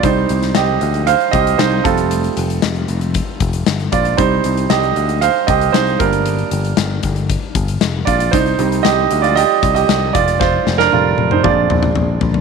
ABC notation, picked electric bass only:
X:1
M:4/4
L:1/16
Q:1/4=116
K:Cdor
V:1 name="Picked electric bass" clef=bass
C,,2 C,,2 C,,2 D,,3 z C,,2 C,,2 F,,,2- | F,,,2 F,,,2 F,,,2 F,,,3 z F,,,2 G,,,2 B,,,2 | C,,2 C,,2 C,,2 D,,3 z C,,2 C,,2 G,,,2- | G,,,2 G,,,2 G,,,2 G,,,3 z G,,,2 F,,,2 B,,,2 |
C,,2 C,,2 C,,2 D,,3 z C,,2 C,,2 F,,,2- | F,,,2 F,,,2 F,,,2 F,,,2 B,,,2 B,,,2 B,,,2 B,,,2 |]